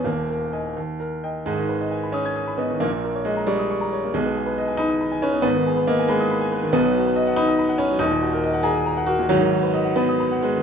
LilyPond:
<<
  \new Staff \with { instrumentName = "Grand piano" } { \time 6/8 \key gis \minor \tempo 4. = 91 <dis,, dis,>8 ais'8 <dis'' gis''>8 dis,8 ais'8 <dis'' g''>8 | <gis,, gis,>16 dis16 b'16 dis''16 gis''16 b''16 dis'''16 gis'''16 dis'''16 b''16 dis''16 dis16 | <ais,, ais,>16 ais16 ais'16 cis''16 dis''16 ais''16 cis'''16 dis'''16 cis'''16 ais''16 cis''16 ais16 | <b,, b,>16 b16 gis'16 b'16 dis''16 gis''16 b''16 dis'''16 b''16 gis''16 b'16 b16 |
<gis,, gis,>16 dis16 gis'16 b'16 dis''16 gis''16 b''16 dis'''16 b''16 gis''16 b'16 dis16 | \key b \major <b,, b,>16 fis16 fis'16 b'16 dis''16 fis''16 b''16 dis'''16 b''16 fis''16 b'16 fis16 | <dis,, dis,>16 ais,16 fis'16 ais'16 dis''16 fis''16 ais''16 dis'''16 ais''16 fis''16 ais'16 ais,16 | <gis,, gis,>16 dis16 fis'16 b'16 dis''16 fis''16 b''16 dis'''16 b''16 fis''16 b'16 dis16 | }
  \new Staff \with { instrumentName = "Grand piano" } { \time 6/8 \key gis \minor ais4. r4. | gis4. cis'4 b8 | ais4 gis8 g4. | gis4. dis'4 cis'8 |
b4 ais8 gis4. | \key b \major b4. dis'4 cis'8 | dis'4. gis'4 fis'8 | fis4. b4 gis8 | }
>>